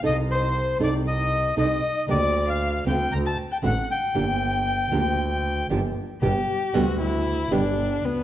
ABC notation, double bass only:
X:1
M:4/4
L:1/8
Q:1/4=116
K:Gm
V:1 name="Double bass" clef=bass
C,,3 C,,3 C,, z | D,,3 D,, D,, z A,,, z | G,,,3 D,,3 G,,, z | [K:G] G,,, z D,,3 G,,,2 D,, |]